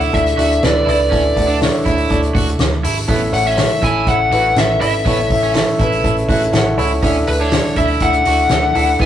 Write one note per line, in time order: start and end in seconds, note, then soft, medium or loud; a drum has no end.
0.00 1.11 D3 medium
0.00 0.13 D4 loud
0.00 0.13 E4 loud
0.00 0.23 E4 medium
0.00 0.13 A4 loud
0.00 1.62 C#5 medium
0.00 2.11 D5 medium
0.00 0.14 E5 loud
0.00 open hi-hat medium
0.13 0.33 D2 loud
0.13 0.35 D4 medium
0.13 0.35 E4 medium
0.13 0.35 A4 medium
0.13 0.35 E5 medium
0.13 0.64 E5 loud
0.13 kick medium
0.13 hi-hat pedal medium
0.13 open hi-hat medium
0.26 hi-hat pedal medium
0.26 open hi-hat medium
0.37 0.58 D2 loud
0.37 0.60 D4 loud
0.37 0.60 E4 medium
0.37 0.49 F#4 medium
0.37 0.60 A4 medium
0.37 0.60 E5 loud
0.37 hi-hat pedal medium
0.37 open hi-hat medium
0.51 hi-hat pedal medium
0.62 0.83 D2 medium
0.62 0.84 D4 medium
0.62 0.84 E4 medium
0.62 0.84 A4 medium
0.62 0.84 B4 loud
0.62 0.88 D5 medium
0.62 snare loud
0.62 hi-hat pedal medium
0.62 open hi-hat medium
0.87 1.07 C#2 medium
0.87 1.09 D4 medium
0.87 0.99 E4 medium
0.87 1.09 E4 medium
0.87 1.09 A4 medium
0.87 1.09 B4 medium
0.87 1.58 D5 medium
0.87 hi-hat pedal medium
0.87 open hi-hat medium
1.11 1.32 D2 loud
1.11 1.81 D3 medium
1.11 1.23 C#4 loud
1.11 1.33 D4 medium
1.11 1.33 E4 medium
1.11 1.33 A4 medium
1.11 1.34 E5 loud
1.11 kick loud
1.11 hi-hat pedal medium
1.11 open hi-hat medium
1.36 1.67 D2 loud
1.36 1.58 D4 medium
1.36 1.58 E4 medium
1.36 1.58 A4 medium
1.36 1.58 F#5 medium
1.36 kick medium
1.36 hi-hat pedal medium
1.36 open hi-hat medium
1.48 1.60 D4 medium
1.61 1.83 D4 medium
1.61 1.83 E4 medium
1.61 1.83 A4 medium
1.61 1.83 C#5 loud
1.61 snare loud
1.61 hi-hat pedal medium
1.61 open hi-hat medium
1.86 2.06 D2 medium
1.86 2.07 D4 medium
1.86 2.07 E4 medium
1.86 2.21 E4 medium
1.86 2.07 A4 medium
1.86 2.07 E5 loud
1.86 kick medium
1.86 snare soft
1.86 hi-hat pedal medium
1.86 open hi-hat medium
1.98 open hi-hat medium
2.10 2.30 D2 loud
2.10 2.32 D4 medium
2.10 2.32 E4 medium
2.10 2.32 A4 medium
2.10 2.32 D5 loud
2.10 kick medium
2.10 hi-hat pedal medium
2.10 open hi-hat medium
2.22 hi-hat pedal medium
2.22 open hi-hat soft
2.35 2.55 D2 loud
2.35 2.47 F#4 medium
2.35 2.59 C#6 medium
2.35 kick loud
2.35 hi-hat pedal medium
2.35 open hi-hat medium
2.48 hi-hat pedal medium
2.59 2.85 D2 medium
2.59 2.83 D6 medium
2.59 snare loud
2.59 hi-hat pedal medium
2.59 open hi-hat medium
2.84 3.04 G#1 medium
2.84 2.96 E4 medium
2.84 3.31 A5 medium
2.84 hi-hat pedal medium
2.84 open hi-hat medium
3.08 3.29 A1 loud
3.08 3.78 A2 medium
3.08 3.20 B3 loud
3.08 3.30 C#4 loud
3.08 3.30 E4 medium
3.08 3.30 A4 loud
3.08 3.30 E5 loud
3.08 kick medium
3.08 hi-hat pedal medium
3.08 open hi-hat medium
3.32 3.64 A1 loud
3.32 3.54 C#4 medium
3.32 3.55 E4 medium
3.32 3.55 A4 medium
3.32 3.55 C#5 medium
3.32 3.45 F#5 loud
3.32 hi-hat pedal medium
3.32 open hi-hat medium
3.46 3.57 C#4 medium
3.46 3.84 E5 medium
3.57 3.79 C#4 medium
3.57 3.79 E4 medium
3.57 3.79 A4 medium
3.57 3.79 C#5 medium
3.57 snare loud
3.57 clap medium
3.57 hi-hat pedal medium
3.57 open hi-hat loud
3.82 4.03 A1 medium
3.82 4.04 C#4 medium
3.82 4.04 E4 medium
3.82 4.18 E4 medium
3.82 4.04 A4 medium
3.82 4.04 E5 medium
3.82 4.06 G#5 loud
3.82 kick medium
3.82 snare soft
3.82 hi-hat pedal medium
3.82 open hi-hat medium
4.07 4.27 A1 loud
4.07 4.29 C#4 medium
4.07 4.29 E4 medium
4.07 4.29 A4 medium
4.07 4.29 E5 medium
4.07 4.59 F#5 loud
4.07 kick medium
4.07 hi-hat pedal medium
4.07 open hi-hat medium
4.32 4.52 A1 loud
4.32 4.53 C#4 medium
4.32 4.54 E4 medium
4.32 4.44 F#4 medium
4.32 4.54 A4 medium
4.32 4.54 B4 loud
4.32 hi-hat pedal medium
4.32 open hi-hat medium
4.56 4.76 A1 medium
4.56 4.78 C#4 medium
4.56 4.78 E4 medium
4.56 4.79 A4 medium
4.56 4.79 E5 loud
4.56 4.80 E5 medium
4.56 snare loud
4.56 clap medium
4.56 hi-hat pedal medium
4.56 open hi-hat medium
4.81 5.01 G#1 medium
4.81 5.03 C#4 medium
4.81 4.93 E4 medium
4.81 5.03 E4 medium
4.81 5.03 A4 medium
4.81 5.51 E5 medium
4.81 5.03 E5 medium
4.81 hi-hat pedal medium
4.81 open hi-hat medium
5.05 5.26 A1 loud
5.05 5.76 A2 medium
5.05 5.18 B3 loud
5.05 5.28 C#4 medium
5.05 5.28 E4 medium
5.05 5.28 A4 medium
5.05 5.28 C#5 loud
5.05 kick medium
5.05 hi-hat pedal medium
5.05 open hi-hat medium
5.30 5.61 A1 loud
5.30 5.52 C#4 medium
5.30 5.53 E4 medium
5.30 5.53 A4 medium
5.30 5.53 E5 medium
5.30 kick medium
5.30 hi-hat pedal medium
5.30 open hi-hat medium
5.42 5.54 C#4 medium
5.55 5.77 C#4 medium
5.55 5.77 E4 medium
5.55 5.77 A4 medium
5.55 5.77 E5 loud
5.55 snare loud
5.55 clap medium
5.55 hi-hat pedal medium
5.55 open hi-hat loud
5.79 6.00 A1 loud
5.79 6.02 C#4 medium
5.79 6.15 E4 medium
5.79 6.02 E4 medium
5.79 6.02 A4 medium
5.79 6.02 B4 medium
5.79 kick medium
5.79 hi-hat pedal medium
5.79 open hi-hat medium
5.92 open hi-hat medium
6.04 6.24 A1 loud
6.04 6.26 C#4 medium
6.04 6.26 E4 medium
6.04 6.26 A4 medium
6.04 6.26 E5 loud
6.04 kick medium
6.04 hi-hat pedal medium
6.04 open hi-hat medium
6.17 hi-hat pedal medium
6.17 open hi-hat soft
6.28 6.49 A1 loud
6.28 6.50 C#4 loud
6.28 6.50 E4 loud
6.28 6.41 F#4 medium
6.28 6.51 A4 loud
6.28 6.51 E5 loud
6.28 kick loud
6.28 hi-hat pedal medium
6.28 open hi-hat medium
6.41 hi-hat pedal medium
6.53 6.77 A1 medium
6.53 6.75 C#4 loud
6.53 6.75 E4 medium
6.53 6.75 A4 loud
6.53 6.75 F#5 loud
6.53 snare loud
6.53 clap medium
6.53 hi-hat pedal medium
6.53 open hi-hat medium
6.77 6.98 C#2 medium
6.77 7.00 C#4 medium
6.77 7.00 E4 medium
6.77 6.90 E4 medium
6.77 7.00 A4 medium
6.77 7.00 C#5 loud
6.77 hi-hat pedal medium
6.77 open hi-hat medium
7.03 7.23 D2 loud
7.03 7.73 D3 medium
7.03 7.15 C#4 loud
7.03 7.24 D4 loud
7.03 7.25 E4 medium
7.03 7.25 A4 medium
7.03 7.25 E5 loud
7.03 kick loud
7.03 hi-hat pedal medium
7.03 open hi-hat medium
7.27 7.58 D2 medium
7.27 7.49 D4 medium
7.27 7.49 E4 medium
7.27 7.49 A4 medium
7.27 7.40 B4 medium
7.27 hi-hat pedal medium
7.27 open hi-hat medium
7.40 7.52 D4 medium
7.40 7.77 C#5 medium
7.52 7.74 D4 medium
7.52 7.74 E4 medium
7.52 7.74 A4 medium
7.52 7.74 D5 medium
7.52 snare loud
7.52 clap medium
7.52 hi-hat pedal medium
7.52 open hi-hat loud
7.76 7.97 D2 medium
7.76 7.99 D4 medium
7.76 8.12 E4 medium
7.76 7.99 E4 medium
7.76 7.99 A4 medium
7.76 7.84 E5 medium
7.76 7.99 E5 medium
7.76 kick medium
7.76 hi-hat pedal medium
7.76 open hi-hat medium
7.88 open hi-hat medium
8.00 8.21 D2 loud
8.00 8.23 D4 medium
8.00 8.24 E4 medium
8.00 8.24 A4 medium
8.00 8.24 E5 medium
8.00 8.96 F#5 medium
8.00 kick medium
8.00 hi-hat pedal medium
8.00 open hi-hat medium
8.12 hi-hat pedal medium
8.25 8.46 D2 loud
8.25 8.48 D4 medium
8.25 8.48 E4 medium
8.25 8.38 F#4 medium
8.25 8.48 A4 medium
8.25 8.48 E5 medium
8.25 hi-hat pedal medium
8.25 open hi-hat medium
8.49 8.70 D2 medium
8.49 8.72 D4 medium
8.49 8.73 E4 medium
8.49 8.73 A4 medium
8.49 8.73 E5 medium
8.49 snare loud
8.49 clap medium
8.49 hi-hat pedal medium
8.49 open hi-hat medium
8.75 8.96 D2 medium
8.75 8.97 D4 medium
8.75 8.97 E4 medium
8.75 8.87 E4 medium
8.75 8.97 A4 medium
8.75 8.97 F#5 medium
8.75 hi-hat pedal medium
8.75 open hi-hat medium
8.99 9.06 E2 loud
8.99 9.06 E3 medium
8.99 9.06 B3 loud
8.99 9.06 E4 medium
8.99 9.06 G#4 medium
8.99 9.06 E5 loud
8.99 9.06 G#5 loud
8.99 kick medium
8.99 snare medium